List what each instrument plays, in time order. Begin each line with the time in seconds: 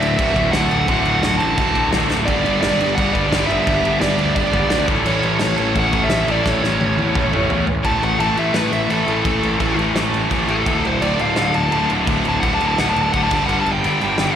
Already playing: distorted electric guitar D2 A2 D3 A3 F#4
0.00 picked electric bass D1, lead electric guitar E5, crash
0.18 picked electric bass D1, distorted electric guitar D2 A2 D3 A3, kick, crash
0.22 distorted electric guitar F#4
0.34 picked electric bass D1, overdriven electric guitar D2 A2 D3, kick, crash
0.51 picked electric bass D1, overdriven electric guitar D2 A2 D3, lead electric guitar F#5, snare, crash
0.71 picked electric bass D1, crash
0.88 picked electric bass D1, distorted electric guitar D2 A2 D3 A3 F#4, lead electric guitar F#5, kick, crash
1.05 picked electric bass D1, crash
1.23 picked electric bass D1, snare, crash
1.38 picked electric bass A1, lead electric guitar A5, crash
1.58 picked electric bass D1, distorted electric guitar D2 A2 D3 A3, kick, crash
1.62 distorted electric guitar F#4
1.73 picked electric bass D1, overdriven electric guitar D2 A2 D3, kick, crash
1.90 picked electric bass A1, overdriven electric guitar D2 A2 D3, snare, crash
2.09 picked electric bass D1, snare
2.26 picked electric bass G1, distorted electric guitar G2 D3 G3 B3, lead electric guitar D5, kick, crash
2.31 distorted electric guitar D4 G4
2.44 picked electric bass G1, crash
2.61 picked electric bass G1, lead electric guitar D5, snare, crash
2.78 picked electric bass G1, crash
2.95 picked electric bass G1, distorted electric guitar G2 D3 G3 B3, lead electric guitar F#5, kick, crash
3.00 distorted electric guitar D4 G4
3.13 picked electric bass G1, overdriven electric guitar G2 D3 G3, lead electric guitar D5, kick, crash
3.31 picked electric bass G1, overdriven electric guitar G2 D3 G3, snare, crash
3.47 picked electric bass G1, lead electric guitar E5, crash
3.67 picked electric bass G1, distorted electric guitar G2 D3 G3 B3 D4 G4, kick, crash
3.83 picked electric bass G1, crash
4.00 picked electric bass G1, lead electric guitar D5, snare, crash
4.18 picked electric bass D2, crash
4.35 picked electric bass G1, distorted electric guitar G2 D3 G3 B3, lead electric guitar D5, kick, crash
4.40 distorted electric guitar D4 G4
4.52 picked electric bass G1, overdriven electric guitar G2 D3 G3, kick, crash
4.70 picked electric bass D2, overdriven electric guitar G2 D3 G3, snare, crash
4.88 picked electric bass A1, distorted electric guitar A2 E3 A3 C#4 E4, kick, crash
4.92 distorted electric guitar A4
5.05 picked electric bass A1, lead electric guitar C#5, crash
5.23 picked electric bass A1, crash
5.39 picked electric bass A1, lead electric guitar C#5, snare, crash
5.57 picked electric bass A1, distorted electric guitar A2 E3 A3 C#4 E4 A4, crash
5.74 picked electric bass A1, overdriven electric guitar A2 E3 A3, kick, crash
5.79 lead electric guitar F#5
5.92 picked electric bass A1, overdriven electric guitar A2 E3 A3, kick, crash
6.04 lead electric guitar E5
6.10 picked electric bass A1, snare, crash
6.27 picked electric bass A1, distorted electric guitar A2 E3 A3 C#4 E4 A4, lead electric guitar D5, crash
6.45 picked electric bass A1, lead electric guitar C#5, kick, snare
6.63 picked electric bass A1, snare
6.81 picked electric bass A1, high tom
6.96 picked electric bass E2, distorted electric guitar A2 E3 A3 C#4 E4 A4, high tom
7.14 picked electric bass A1, overdriven electric guitar A2 E3 A3, kick, mid tom
7.31 picked electric bass A1, overdriven electric guitar A2 E3 A3, mid tom
7.50 picked electric bass E2, floor tom
7.67 picked electric bass A1, floor tom
7.83 picked electric bass A1, distorted electric guitar A2 E3 A3, lead electric guitar A5, kick, crash
8.03 picked electric bass A1, lead electric guitar F#5, crash
8.18 picked electric bass A1, distorted electric guitar A2 E3 A3, lead electric guitar A5, crash
8.36 picked electric bass A1, distorted electric guitar A2 E3 A3, lead electric guitar E5, crash
8.54 picked electric bass A1, distorted electric guitar A2 E3 A3, lead electric guitar B4, snare, crash
8.72 picked electric bass A1, lead electric guitar E5, crash
8.89 picked electric bass A1, distorted electric guitar A2 E3 A3, lead electric guitar A4, crash
9.06 picked electric bass A1, distorted electric guitar A2 E3, overdriven electric guitar A3, lead electric guitar A4, crash
9.11 distorted electric guitar A3
9.25 picked electric bass A1, distorted electric guitar A2 E3 A3, kick, crash
9.43 picked electric bass A1, crash
9.60 picked electric bass A1, distorted electric guitar A2 E3 A3, kick, crash
9.77 picked electric bass A1, distorted electric guitar A2 E3 A3, crash
9.95 picked electric bass A1, distorted electric guitar A2 E3 A3, snare, crash
10.13 picked electric bass A1, crash
10.31 picked electric bass A1, distorted electric guitar A2 E3 A3, kick, crash
10.48 picked electric bass A1, distorted electric guitar A2 E3 A3, lead electric guitar A4, crash
10.65 picked electric bass D1, distorted electric guitar D2 A2 D3, kick, crash
10.85 picked electric bass D1, lead electric guitar C5, crash
11.01 picked electric bass D1, distorted electric guitar D2 A2 D3, lead electric guitar D5, crash
11.18 picked electric bass D1, distorted electric guitar D2 A2 D3, lead electric guitar F5, crash
11.36 picked electric bass D1, distorted electric guitar D2 A2 D3, snare, crash
11.54 picked electric bass D1, lead electric guitar A5, crash
11.72 picked electric bass D1, distorted electric guitar D2 A2 D3, lead electric guitar A5, crash
11.90 picked electric bass D1, distorted electric guitar D2 A2 D3, crash
12.07 picked electric bass D1, distorted electric guitar D2 A2 D3, kick, crash
12.25 picked electric bass D1, lead electric guitar A5, crash
12.40 picked electric bass D1, distorted electric guitar D2 A2 D3, lead electric guitar F#5, kick, crash
12.54 lead electric guitar A5
12.60 picked electric bass D1, distorted electric guitar D2 A2 D3, crash
12.68 lead electric guitar A5
12.77 picked electric bass D1, distorted electric guitar D2 A2 D3, lead electric guitar F#5, snare, crash
12.90 lead electric guitar A5
12.96 picked electric bass D1, crash
13.02 lead electric guitar A5
13.12 picked electric bass D1, distorted electric guitar D2 A2 D3, lead electric guitar F#5, kick, crash
13.23 lead electric guitar A5
13.31 picked electric bass G1, distorted electric guitar G2 D3 G3, kick, crash
13.36 lead electric guitar A5
13.46 picked electric bass G1, distorted electric guitar G2, lead electric guitar F#5, crash
13.50 distorted electric guitar D3 G3
13.61 lead electric guitar A5
13.66 picked electric bass G1, crash
13.72 lead electric guitar G5
13.84 picked electric bass G1, distorted electric guitar G2 D3 G3, crash
14.01 picked electric bass G1, distorted electric guitar G2 D3 G3, crash
14.18 picked electric bass G1, distorted electric guitar G2 D3 G3, snare, crash